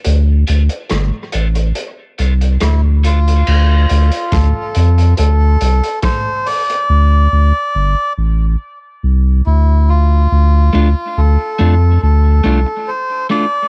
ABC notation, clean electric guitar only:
X:1
M:4/4
L:1/8
Q:1/4=70
K:Dm
V:1 name="Clean electric guitar"
z [A,DF] z [A,DF] z [A,DF] z [A,DF] | z8 | z8 | z [A,DF] z [A,DF] z [A,DF] z [A,DF] |]